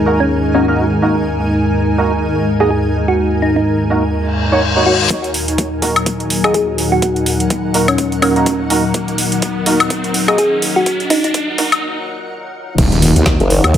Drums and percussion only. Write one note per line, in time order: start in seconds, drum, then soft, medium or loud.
5.10 kick loud
5.10 closed hi-hat medium
5.24 closed hi-hat soft
5.34 open hi-hat loud
5.48 closed hi-hat medium
5.58 kick loud
5.58 closed hi-hat medium
5.82 kick medium
5.82 open hi-hat loud
5.96 closed hi-hat medium
5.96 high woodblock medium
6.06 kick loud
6.06 closed hi-hat medium
6.20 closed hi-hat soft
6.30 open hi-hat loud
6.44 closed hi-hat soft
6.44 high woodblock medium
6.54 kick loud
6.54 closed hi-hat medium
6.78 open hi-hat loud
7.02 kick loud
7.02 closed hi-hat medium
7.16 closed hi-hat soft
7.26 open hi-hat loud
7.40 closed hi-hat medium
7.50 kick loud
7.50 closed hi-hat medium
7.74 open hi-hat loud
7.88 closed hi-hat medium
7.88 high woodblock medium
7.98 kick loud
7.98 closed hi-hat medium
8.12 closed hi-hat soft
8.22 open hi-hat loud
8.22 high woodblock medium
8.36 closed hi-hat soft
8.46 kick loud
8.46 closed hi-hat medium
8.70 open hi-hat loud
8.94 kick loud
8.94 closed hi-hat medium
9.08 closed hi-hat soft
9.18 open hi-hat loud
9.32 closed hi-hat medium
9.42 kick loud
9.42 closed hi-hat medium
9.66 open hi-hat loud
9.80 closed hi-hat soft
9.80 high woodblock medium
9.90 kick loud
9.90 closed hi-hat medium
10.04 closed hi-hat soft
10.14 open hi-hat loud
10.28 closed hi-hat soft
10.28 high woodblock medium
10.38 kick loud
10.38 closed hi-hat medium
10.62 open hi-hat loud
10.86 kick loud
10.86 closed hi-hat medium
11.00 closed hi-hat soft
11.10 kick loud
11.10 open hi-hat loud
11.24 closed hi-hat medium
11.34 kick loud
11.34 closed hi-hat medium
11.58 kick loud
11.58 open hi-hat loud
11.72 closed hi-hat soft
11.72 high woodblock medium
12.78 kick loud
12.78 closed hi-hat medium
12.78 crash loud
12.92 closed hi-hat soft
13.02 open hi-hat loud
13.16 closed hi-hat medium
13.26 kick loud
13.26 snare loud
13.26 closed hi-hat medium
13.40 closed hi-hat soft
13.50 open hi-hat loud
13.64 closed hi-hat medium
13.64 high woodblock medium
13.74 kick loud
13.74 closed hi-hat medium